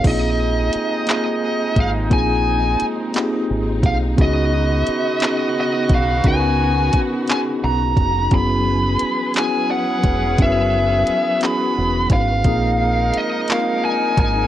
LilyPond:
<<
  \new Staff \with { instrumentName = "Lead electric guitar" } { \time 6/8 \key bes \phrygian \tempo 4. = 58 ees''4. ees''4 f''8 | aes''4 r4. f''8 | ees''4. ees''8 ees''8 f''8 | aes''4 r8 aes''8 bes''4 |
ces'''4. aes''8 ges''4 | fes''4. ces'''4 f''8~ | f''4 ees''8 f''8 aes''8 aes''8 | }
  \new Staff \with { instrumentName = "Tine electric piano" } { \time 6/8 \key bes \phrygian << { des''16 r2 r8. | r2. | r2. | r2. |
r2. | r2. | r2. | } \\ { <bes c' ees' f' aes'>4 r8 <bes c' ees' f' aes'>4 r8 | <bes c' ees' f' aes'>4 r8 <bes c' ees' f' g' aes'>4 r8 | <ces' des' ees' ges' aes'>4 r8 <ces' des' ees' ges' aes'>4 r8 | <ces' des' ees' ges' bes' ces''>4 r8 <ces' des' ees' ges' aes'>4 r8 |
<ces' des' fes' ges' aes'>4 r8 <ces' des' fes' ges' aes'>4 r8 | <ces' des' fes' ges' bes' ces''>4 r8 <ces' des' fes' ges' aes'>4 r8 | <bes c' ees' f' aes'>4 r8 <bes c' ees' f' bes'>4 r8 | } >> }
  \new Staff \with { instrumentName = "Horn section" } { \time 6/8 \key bes \phrygian <c aes ees'>2.~ | <c aes ees'>2~ <c aes ees'>8 r8 | <ees ces' ges'>2.~ | <ees ces' ges'>2~ <ees ces' ges'>8 r8 |
r4. <fes des' aes'>4.~ | <fes des' aes'>2~ <fes des' aes'>8 r8 | <f ees' bes'>2. | }
  \new Staff \with { instrumentName = "String section" } { \time 6/8 \key bes \phrygian << { <aes ees'>2.~ | <aes ees'>2. | <des ces' ges'>2.~ | <des ces' ges'>2. |
<fes ges ces''>2.~ | <fes ges ces''>2. | <aes ees'>2. | } \\ { bes2. | c'2. | r2. | r2. |
aes'2. | ges'2. | bes2. | } >> }
  \new Staff \with { instrumentName = "Fingered electric bass" } { \clef bass \time 6/8 \key bes \phrygian bes,,4 r4. aes,,8 | bes,,4 r4 aes,,8 ces,8 | des,4 r4. ces,8 | des,4 r4 ces,8 f,,8 |
ges,,4 r4. fes,,8 | ges,,4 r4 fes,,8 aes,,8 | bes,,4 r4. aes,,8 | }
  \new DrumStaff \with { instrumentName = "Drums" } \drummode { \time 6/8 <cymc hh bd>4 hh8 <hc hh>4 <hh bd>8 | <hh bd>4 hh8 <hc hh>4 <hh bd>8 | <hh bd>4 hh8 <hc hh>4 <hh bd>8 | <hh bd>4 <hh bd>8 <hc hh>4 <hh bd>8 |
<hh bd>4 hh8 <hc hh>4 <hh bd>8 | <hh bd>4 hh8 <hc hh>4 <hh bd>8 | <hh bd>4 hh8 <hc hh>4 <hh bd>8 | }
>>